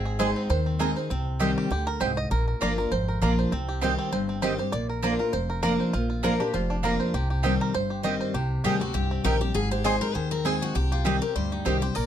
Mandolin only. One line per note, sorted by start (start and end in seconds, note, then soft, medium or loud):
0.19 0.29 C4 loud
0.19 0.29 G#4 loud
0.19 0.30 D#5 loud
0.19 0.30 G#5 loud
0.79 0.90 C4 medium
0.79 0.90 G#4 loud
0.79 0.90 D#5 medium
0.79 0.90 G#5 loud
1.40 1.50 C4 loud
1.40 1.50 G4 medium
1.40 1.50 D#5 loud
1.40 1.51 G5 loud
2.00 2.11 C4 medium
2.00 2.11 G4 medium
2.00 2.11 D#5 medium
2.00 2.11 G5 loud
2.61 2.71 A#3 medium
2.61 2.71 F4 loud
2.61 2.71 D5 loud
2.61 2.72 A#5 loud
3.22 3.32 A#3 medium
3.22 3.32 F4 medium
3.22 3.32 D5 medium
3.22 3.32 A#5 medium
3.81 3.92 C4 loud
3.81 3.92 G4 loud
3.81 3.92 D#5 loud
3.81 3.92 G5 loud
4.42 4.52 C4 medium
4.42 4.53 G4 medium
4.42 4.53 D#5 loud
4.42 4.53 G5 medium
5.03 5.13 A#3 medium
5.03 5.13 F4 loud
5.03 5.13 D5 loud
5.03 5.13 A#5 loud
5.63 5.73 A#3 medium
5.63 5.73 F4 medium
5.63 5.73 D5 loud
5.63 5.73 A#5 medium
6.23 6.33 A#3 loud
6.23 6.33 F4 loud
6.23 6.33 D5 loud
6.23 6.33 A#5 loud
6.83 6.93 A#3 medium
6.83 6.93 F4 medium
6.83 6.94 D5 medium
6.83 6.94 A#5 loud
7.43 7.53 C4 medium
7.43 7.54 G4 loud
7.43 7.54 D#5 loud
7.43 7.54 G5 loud
8.04 8.14 C4 medium
8.04 8.14 G4 medium
8.04 8.14 D#5 medium
8.04 8.14 G5 medium
8.64 8.74 C4 medium
8.64 8.74 G4 loud
8.64 8.75 D#5 loud
8.64 8.75 G5 medium
9.24 9.34 C4 medium
9.24 9.35 G4 loud
9.24 9.35 D#5 medium
9.24 9.35 G5 loud
9.84 9.95 C4 medium
9.84 9.95 G#4 loud
9.84 9.95 D#5 loud
9.84 9.95 G#5 loud
10.45 10.55 C4 medium
10.45 10.55 G#4 medium
10.45 10.55 D#5 medium
10.45 10.55 G#5 medium
11.05 11.15 C4 medium
11.05 11.15 G4 loud
11.05 11.15 D#5 loud
11.05 11.15 G5 loud
11.65 11.75 C4 medium
11.65 11.75 G4 medium
11.65 11.76 D#5 medium
11.65 11.76 G5 medium